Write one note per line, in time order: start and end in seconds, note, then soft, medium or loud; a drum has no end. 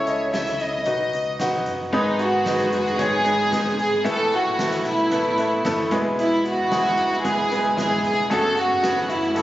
0.00 0.30 C#2 medium
0.00 0.56 C#3 medium
0.00 0.30 C#5 medium
0.06 0.26 E4 medium
0.06 0.26 A4 medium
0.06 0.27 C#5 medium
0.06 0.27 D#5 medium
0.06 closed hi-hat soft
0.32 0.83 C#2 medium
0.32 0.71 E4 medium
0.32 0.71 A4 medium
0.32 0.72 C#5 medium
0.32 0.72 E5 medium
0.32 0.61 E5 medium
0.32 kick loud
0.32 snare loud
0.32 closed hi-hat medium
0.47 closed hi-hat medium
0.59 1.67 D#5 medium
0.59 closed hi-hat medium
0.73 floor tom medium
0.85 1.11 B1 medium
0.85 1.25 D#4 medium
0.85 1.25 F#4 medium
0.85 1.26 B4 medium
0.85 1.26 D#5 medium
0.85 kick medium
0.85 closed hi-hat medium
1.13 1.38 C#2 medium
1.13 closed hi-hat medium
1.39 1.65 B1 medium
1.39 1.78 D#4 medium
1.39 1.79 F#4 medium
1.39 1.79 B4 medium
1.39 1.79 F#5 medium
1.39 kick medium
1.39 snare medium
1.39 closed hi-hat medium
1.52 floor tom medium
1.66 1.91 F#1 medium
1.66 closed hi-hat medium
1.79 floor tom soft
1.92 2.30 G#1 loud
1.92 2.69 G#2 medium
1.92 2.69 D#3 medium
1.92 4.04 D#3 medium
1.92 2.31 G#3 loud
1.92 2.32 B3 medium
1.92 4.04 B3 medium
1.92 2.18 D#4 medium
1.92 2.32 D#4 medium
1.92 4.03 G#4 medium
1.92 2.32 G#4 medium
1.92 2.32 B4 loud
1.92 kick loud
1.92 crash loud
2.19 2.72 F#4 medium
2.19 closed hi-hat medium
2.33 2.57 G#1 medium
2.46 2.85 G#3 medium
2.46 2.85 B3 medium
2.46 2.85 D#4 medium
2.46 2.85 G#4 medium
2.46 2.86 B4 medium
2.46 kick loud
2.46 snare loud
2.46 closed hi-hat medium
2.59 closed hi-hat medium
2.72 2.97 F#1 medium
2.72 2.98 F#4 medium
2.72 closed hi-hat medium
2.86 snare soft
2.86 closed hi-hat soft
2.86 floor tom medium
2.97 3.49 G#1 loud
2.97 3.18 G#3 medium
2.97 3.18 B3 medium
2.97 3.18 D#4 medium
2.97 3.18 G#4 medium
2.97 3.80 G#4 loud
2.97 3.19 C#5 medium
2.97 kick loud
2.97 closed hi-hat loud
3.24 3.44 G#3 medium
3.24 3.45 B3 medium
3.24 3.45 D#4 medium
3.24 3.45 G#4 medium
3.24 3.45 B4 medium
3.24 closed hi-hat medium
3.24 floor tom medium
3.51 3.77 G#1 medium
3.51 3.90 G#3 medium
3.51 3.91 B3 medium
3.51 3.91 D#4 medium
3.51 3.91 G#4 medium
3.51 3.91 B4 medium
3.51 kick loud
3.51 snare loud
3.51 closed hi-hat loud
3.65 floor tom medium
3.78 4.03 G#1 loud
3.78 4.05 G#4 loud
3.78 closed hi-hat medium
3.92 floor tom medium
4.04 4.43 A1 loud
4.04 4.81 A2 medium
4.04 8.27 B2 medium
4.04 4.81 E3 medium
4.04 4.44 A3 loud
4.04 5.90 A3 medium
4.04 4.44 B3 medium
4.04 4.44 E4 medium
4.04 5.90 E4 medium
4.04 4.44 A4 medium
4.04 4.31 A4 loud
4.04 4.44 B4 loud
4.04 kick loud
4.04 closed hi-hat medium
4.32 4.86 F#4 loud
4.32 closed hi-hat medium
4.45 4.70 A1 loud
4.58 4.97 A3 medium
4.58 4.97 B3 medium
4.58 4.98 E4 medium
4.58 4.98 A4 medium
4.58 4.98 B4 medium
4.58 kick loud
4.58 snare loud
4.58 closed hi-hat medium
4.72 closed hi-hat medium
4.85 5.10 B1 medium
4.85 5.89 E4 medium
4.85 closed hi-hat medium
4.99 floor tom medium
5.11 5.61 A1 loud
5.11 5.30 A3 medium
5.11 5.31 B3 medium
5.11 5.31 E4 medium
5.11 5.31 A4 medium
5.11 5.31 B4 medium
5.11 kick loud
5.11 closed hi-hat medium
5.38 5.57 A3 medium
5.38 5.57 B3 medium
5.38 5.58 E4 medium
5.38 5.58 A4 medium
5.38 5.58 B4 medium
5.38 closed hi-hat medium
5.65 5.89 F#1 medium
5.65 5.91 A3 medium
5.65 5.90 B3 medium
5.65 5.90 E4 medium
5.65 5.92 A4 medium
5.65 5.92 B4 medium
5.65 kick loud
5.65 snare loud
5.65 closed hi-hat loud
5.77 floor tom medium
5.91 6.54 E1 loud
5.91 6.67 B2 medium
5.91 6.55 G#3 loud
5.91 6.55 B3 medium
5.91 9.42 B3 medium
5.91 6.55 E4 medium
5.91 8.28 E4 medium
5.91 6.55 G#4 medium
5.91 6.56 B4 loud
5.91 kick loud
5.91 closed hi-hat medium
6.04 floor tom medium
6.19 6.44 E4 loud
6.19 closed hi-hat medium
6.45 7.22 F#4 loud
6.45 closed hi-hat medium
6.58 6.83 E1 loud
6.70 7.09 G#3 medium
6.70 7.10 B3 medium
6.70 7.10 E4 medium
6.70 7.10 G#4 medium
6.70 7.11 B4 medium
6.70 kick loud
6.70 snare loud
6.70 closed hi-hat medium
6.85 closed hi-hat medium
6.97 7.22 E1 loud
6.97 closed hi-hat medium
7.12 snare soft
7.12 closed hi-hat soft
7.12 floor tom medium
7.24 7.74 E1 loud
7.24 7.43 G#3 medium
7.24 7.44 B3 medium
7.24 7.44 E4 medium
7.24 7.77 G#4 loud
7.24 7.44 G#4 medium
7.24 7.44 B4 medium
7.24 kick loud
7.24 closed hi-hat medium
7.51 7.70 G#3 medium
7.51 7.70 B3 medium
7.51 7.70 E4 medium
7.51 7.71 G#4 medium
7.51 7.71 B4 medium
7.51 closed hi-hat medium
7.51 floor tom medium
7.76 8.02 G#1 loud
7.76 8.15 G#3 medium
7.76 8.16 B3 medium
7.76 8.16 E4 medium
7.76 8.16 G#4 medium
7.76 8.03 G#4 loud
7.76 8.16 B4 medium
7.76 kick loud
7.76 snare loud
7.76 closed hi-hat loud
7.91 floor tom medium
8.04 8.29 E1 loud
8.04 8.29 G#4 loud
8.04 closed hi-hat medium
8.18 floor tom medium
8.30 8.68 F#1 loud
8.30 9.42 A2 medium
8.30 9.06 C#3 medium
8.30 8.69 A3 medium
8.30 8.69 C#4 loud
8.30 9.42 F#4 medium
8.30 8.69 F#4 loud
8.30 8.70 G#4 medium
8.30 8.70 A4 loud
8.30 8.56 A4 loud
8.30 kick loud
8.30 closed hi-hat loud
8.57 9.11 F#4 loud
8.57 closed hi-hat medium
8.71 8.95 F#1 loud
8.82 9.22 A3 medium
8.82 9.22 C#4 medium
8.82 9.22 F#4 medium
8.82 9.22 G#4 medium
8.82 9.22 B4 medium
8.82 kick loud
8.82 snare loud
8.82 closed hi-hat medium
9.09 9.35 F#1 medium
9.09 9.42 E4 medium
9.09 closed hi-hat medium
9.23 snare soft
9.23 closed hi-hat soft
9.23 floor tom medium
9.35 9.42 F#1 loud
9.35 9.42 A3 medium
9.35 9.42 C#4 medium
9.35 9.42 F#4 medium
9.35 9.42 G#4 medium
9.35 9.42 A4 medium
9.35 kick loud
9.35 closed hi-hat loud